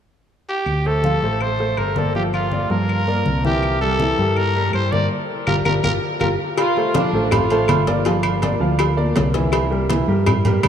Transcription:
0.49 G4
0.66 D2, high conga, claves
0.85 A3 A4 C5, high conga
1.04 F3 F4 F5, high conga
1.22 A1 A3 A4 C5, high conga
1.41 C5, high conga, claves
1.59 A3 A4 C5, high conga
1.77 G1 A#4, high conga, claves
1.96 A#3 A4 A#4 D5, high conga
2.15 F3 F4 G4 F5, high conga
2.34 F4, high conga, claves
2.52 A#3 A#4 D5, high conga
2.70 G2 F3 F4 A#4 F5, high conga
2.89 high conga, claves
3.07 A#3 A#4 D5, high conga
3.26 C2, high conga
3.44 E3 E4 G4 E5, high conga
3.63 high conga, claves
3.81 G3 G4 A4 A#4, high conga
4.00 E3 E4 E5, high conga
4.18 G2 G3 G4 A#4, high conga
4.36 A#4, high conga, claves
4.56 G3 G4 A#4, high conga
4.73 G2 C5, high conga, claves
4.92 A#3 A#4 D5, high conga
5.47 G1 F4 G4 A#4, high conga, claves
5.65 G1 F4 G4 A#4, high conga, claves
5.83 G1 F4 G4 A#4, high conga, claves
6.20 G1 F4 G4 A#4, high conga, claves
6.58 F4, cowbell, high conga, low agogo, claves
6.77 A3 A4 C5, high conga
6.94 F3 D4 F4 F5, cowbell, high conga, low timbale, low agogo
7.13 A1 A3 A4 C5
7.31 F4, cowbell, high conga, low conga, low agogo, claves
7.50 A3 A4 C5, high conga, low agogo
7.68 G1, cowbell, high conga, low timbale, low agogo, claves
7.87 A#3 A#4 D5, cowbell, high conga
8.05 F3 F4 F5, cowbell, high conga, low agogo
8.23 high conga, low agogo, claves
8.42 A#3 A#4 D5, cowbell, high conga, low timbale, low agogo
8.60 D2 F3 F4 F5
8.79 cowbell, high conga, low agogo, claves
8.97 A#3 A#4 D5, high conga
9.15 C2, cowbell, high conga, low timbale, low agogo
9.34 E3 E4 E5, cowbell, high conga
9.52 cowbell, high conga, low agogo, claves
9.71 G3 G4 A#4, high conga
9.89 E3 E4 E5, cowbell, high conga, low timbale, low agogo
10.08 G2 G3 G4 A#4
10.26 cowbell, high conga, low conga, low agogo, claves
10.45 G3 G4 A#4, high conga, low conga, low agogo
10.63 G2, cowbell, high conga, low timbale, low agogo, claves

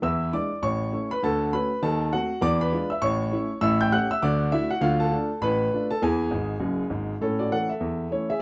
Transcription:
0.02 E2 E3 E5 E6
0.33 G#3 D4 E4 D5 D6
0.62 A1 A2 C#5 C#6
0.93 A3 C#4 E4
1.11 B4 B5
1.23 D2 D3 A4 A5
1.53 A3 C#4 F#4 B4 B5
1.82 D#2 D#3 A4 A5
2.12 A3 C4 F#4 F#5
2.41 E2 E3 D5 D6
2.61 B4 B5
2.72 G#3 D4 F4
2.90 E5 E6
3.02 A1 A2 C#5 C#6
3.32 A3 C#4 E4
3.61 A1 A2 E5 E6
3.81 G5 G6
3.92 A3 C#4 G4 F#5 F#6
4.11 E5 E6
4.22 D2 D3 D5 D6
4.52 A3 D4 E4 F#4 E5
4.70 F#4 F#5
4.81 D2 D3 F4 F5
5.00 A4 A5
5.12 A3 D4 F4
5.41 A1 A2 B4 B5
5.73 A3 D4 F4
5.91 A4 A5
6.02 E2 E3 G#4 G#5
6.31 G#1 G#2
6.60 F#1 F#2
6.90 G#1 G#2
7.21 A2 C#4 A4
7.39 F#4 D5
7.52 E3 A3 C#4 A4 F#5
7.70 A4 E5
7.80 E2
8.11 E3 A3 C#4 E4 C#5
8.30 G#4 E5

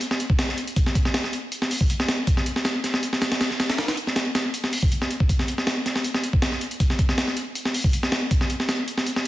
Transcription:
0.01 closed hi-hat
0.11 snare
0.20 closed hi-hat
0.30 kick
0.39 snare, closed hi-hat
0.49 snare
0.58 closed hi-hat
0.68 closed hi-hat
0.76 kick, closed hi-hat
0.86 snare
0.95 kick, closed hi-hat
1.05 snare
1.14 snare, closed hi-hat
1.24 snare
1.33 closed hi-hat
1.52 closed hi-hat
1.62 snare
1.71 open hi-hat
1.81 kick
1.90 closed hi-hat
2.00 snare
2.08 snare, closed hi-hat
2.27 kick, closed hi-hat
2.37 snare
2.46 closed hi-hat
2.56 snare
2.65 snare, closed hi-hat
2.84 snare, closed hi-hat
2.94 snare
3.03 closed hi-hat
3.13 snare
3.22 snare, closed hi-hat
3.32 snare, closed hi-hat
3.41 snare, closed hi-hat
3.51 snare
3.60 snare, closed hi-hat
3.70 snare, closed hi-hat
3.78 snare, closed hi-hat
3.88 snare, closed hi-hat
3.97 closed hi-hat
4.07 snare
4.16 snare, closed hi-hat
4.35 snare, closed hi-hat
4.54 closed hi-hat
4.64 snare
4.73 open hi-hat
4.83 kick
4.92 closed hi-hat
5.02 snare
5.11 closed hi-hat
5.20 kick
5.29 kick, closed hi-hat
5.39 snare
5.48 closed hi-hat
5.58 snare
5.67 snare, closed hi-hat
5.86 snare, closed hi-hat
5.96 snare
6.05 closed hi-hat
6.14 snare
6.24 closed hi-hat
6.33 kick
6.42 snare, closed hi-hat
6.52 snare
6.61 closed hi-hat
6.71 closed hi-hat
6.80 kick, closed hi-hat
6.90 snare
6.99 kick, closed hi-hat
7.09 snare
7.18 snare, closed hi-hat
7.28 snare
7.37 closed hi-hat
7.55 closed hi-hat
7.65 snare
7.74 open hi-hat
7.84 kick
7.93 closed hi-hat
8.03 snare
8.12 snare, closed hi-hat
8.31 kick, closed hi-hat
8.41 snare
8.50 closed hi-hat
8.60 snare
8.69 snare, closed hi-hat
8.88 closed hi-hat
8.98 snare
9.06 closed hi-hat
9.16 snare

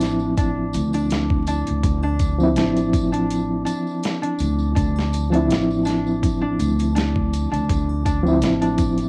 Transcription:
Already playing: A1 F3 C4 D4 E4
0.00 snare, closed hi-hat, tambourine
0.19 tambourine
0.37 D4, kick, closed hi-hat, tambourine
0.73 D2, closed hi-hat, tambourine
0.93 D4, closed hi-hat, tambourine, triangle
1.10 snare, closed hi-hat, tambourine
1.30 kick
1.47 D4, closed hi-hat, tambourine
1.67 D2, closed hi-hat, tambourine
1.83 D2, kick, closed hi-hat, tambourine
2.03 D4, triangle
2.19 kick, closed hi-hat, tambourine
2.38 F3 C4, tambourine
2.43 E4
2.56 A1 D4, snare, closed hi-hat, tambourine
2.77 closed hi-hat, tambourine
2.93 kick, closed hi-hat, tambourine
3.12 D4, closed hi-hat, tambourine
3.30 closed hi-hat, tambourine
3.65 D4, closed hi-hat, tambourine
3.87 tambourine
4.03 snare, closed hi-hat, tambourine
4.22 D4, closed hi-hat
4.39 D2, closed hi-hat, tambourine
4.59 tambourine
4.75 D2 D4, kick, closed hi-hat, tambourine
4.96 snare, triangle
5.13 closed hi-hat, tambourine
5.30 F3 C4 D4, closed hi-hat, tambourine
5.35 E4
5.50 A1, snare, closed hi-hat, tambourine
5.71 tambourine
5.85 D4, snare, closed hi-hat, tambourine
6.07 tambourine
6.23 kick, closed hi-hat, tambourine
6.41 D4
6.59 D2, closed hi-hat, tambourine
6.79 closed hi-hat, tambourine, triangle
6.95 D4, snare, closed hi-hat, tambourine
7.16 kick
7.33 closed hi-hat, tambourine
7.51 D2 D4, closed hi-hat, tambourine
7.69 D2, kick, closed hi-hat, tambourine
7.89 triangle
8.05 D4, kick, closed hi-hat, tambourine
8.23 F3 C4, tambourine
8.28 E4
8.41 A1, snare, closed hi-hat, tambourine
8.61 D4, closed hi-hat, tambourine
8.78 kick, closed hi-hat, tambourine
8.98 closed hi-hat, tambourine

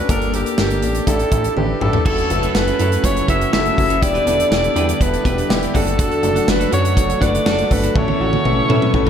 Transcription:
Already playing: C#4 D4 F#4 A4 B4
0.09 G1 A#3 D4 G4 A4 A#4, kick, closed hi-hat
0.22 closed hi-hat
0.34 A#3 D4 G4 A4, closed hi-hat
0.46 closed hi-hat
0.58 G1 A#3 D4 G4 A#4, snare
0.70 closed hi-hat
0.82 A1 A#3 D4 G4 A4, closed hi-hat
0.95 closed hi-hat
1.07 A1 D4 E4 G4 A4, kick, closed hi-hat
1.19 closed hi-hat
1.32 A1 D4 E4 G4 A4, kick, closed hi-hat
1.44 closed hi-hat
1.56 A1 D4 E4 G4 B4, high tom
1.80 A1 D4 E4 G4 A4, mid tom
1.93 floor tom
2.04 F#1 C#3 F#3 A3 C#4 E4 F#4 A4, kick, crash
2.18 closed hi-hat
2.30 F#1 C#4 E4 F#4 B4, muted clean electric guitar stroke, closed hi-hat
2.42 C#4 E4 A4, closed hi-hat
2.54 F#1 C#4 E4 F#4 A4 B4, muted clean electric guitar stroke, snare
2.67 C#4 E4 A4, closed hi-hat
2.79 F#2 C#4 E4 F#4 A4, closed hi-hat
2.91 muted clean electric guitar stroke, closed hi-hat
3.04 F#1 C#4 E4 F#4 B4 C#5, muted clean electric guitar stroke, kick, closed hi-hat
3.16 muted clean electric guitar stroke, closed hi-hat
3.28 F#1 C#4 E4 F#4 A4 B4 E5, kick, closed hi-hat
3.41 muted clean electric guitar stroke, closed hi-hat
3.52 F#1 C#4 E4 F#4 A4 E5, snare
3.65 muted clean electric guitar stroke, closed hi-hat
3.76 F#1 C#4 E4 F#4 A4, muted clean electric guitar stroke, kick, open hi-hat
3.89 C#4 E4 A4, closed hi-hat
4.01 E1 D3 G3 B3 D4 E4 G4 D5, kick, closed hi-hat
4.14 D4 G4 B4, closed hi-hat
4.26 E1 B3 D4 E4 G4 A4 B4, closed hi-hat
4.39 muted clean electric guitar stroke, closed hi-hat
4.51 E1 B3 D4 E4 G4, muted clean electric guitar stroke, snare
4.64 muted clean electric guitar stroke, closed hi-hat
4.75 E2 B3 D4 E4 G4 B4, closed hi-hat
4.89 muted clean electric guitar stroke, closed hi-hat
5.00 E1 B3 D4 E4 A4 B4, muted clean electric guitar stroke, kick, closed hi-hat
5.13 muted clean electric guitar stroke, closed hi-hat
5.24 E1 B3 D4 E4 G4 B4, kick, closed hi-hat
5.37 D4 G4 B4, closed hi-hat
5.49 E1 B3 D4 E4 G4, snare
5.62 muted clean electric guitar stroke, closed hi-hat
5.74 F#1 F#3 A3 D4 F#4 A4, kick, open hi-hat
5.86 muted clean electric guitar stroke, closed hi-hat
5.98 D4 F#4 A4, kick, closed hi-hat
6.12 closed hi-hat
6.22 F#1 A3 D4 F#4 A4, muted clean electric guitar stroke, closed hi-hat
6.35 D4 F#4 A4, closed hi-hat
6.47 F#1 A3 D4 F#4 A4 B4, muted clean electric guitar stroke, snare
6.60 D4 F#4 A4, closed hi-hat
6.71 F#2 A3 D4 F#4 A4 C#5, closed hi-hat
6.84 muted clean electric guitar stroke, closed hi-hat
6.96 F#1 A3 D4 F#4 A4, muted clean electric guitar stroke, kick, closed hi-hat
7.09 muted clean electric guitar stroke, closed hi-hat
7.20 F#1 A3 D4 F#4 A4 B4 D5, kick, closed hi-hat
7.34 muted clean electric guitar stroke, closed hi-hat
7.45 F#1 A3 D4 F#4 A4 D5, snare
7.58 muted clean electric guitar stroke, closed hi-hat
7.70 G1 A3 D4 F#4 A4 B4, muted clean electric guitar stroke, kick, open hi-hat
7.83 D4 F#4 A4, closed hi-hat
7.95 A1 C#3 E3 A3 C#4 E4 A4 C#5, muted clean electric guitar stroke, kick, high tom
8.07 C#4 E4 A4, high tom
8.20 A1 A3 C#4 E4 F#4 A4
8.32 muted clean electric guitar stroke, high tom
8.44 A1 A3 C#4 E4 B4, muted clean electric guitar stroke, mid tom
8.56 muted clean electric guitar stroke
8.69 A2 A3 C#4 E4 A4 B4, mid tom
8.81 muted clean electric guitar stroke, mid tom
8.93 A1 A3 C#4 E4 A4, muted clean electric guitar stroke, kick
9.05 C#4 E4 A4, mid tom

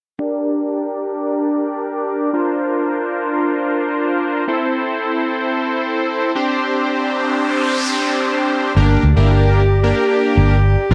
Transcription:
0.19 D4 G4 A#4 D5
2.33 D4 F4 A#4 C5
4.48 C4 E4 A4 C5
6.35 C4 D4 G4 C5
6.62 noise sweep
8.76 G1 A#3 D4 G4 A#4 D5 A#5
9.03 D2
9.16 G1 A#3 D4 E4 G4 A#4
9.30 G4
9.83 A#3 D4 G4 A#4
10.37 G1
10.91 A#1 C4 D4 F4 A#4 D5 C6

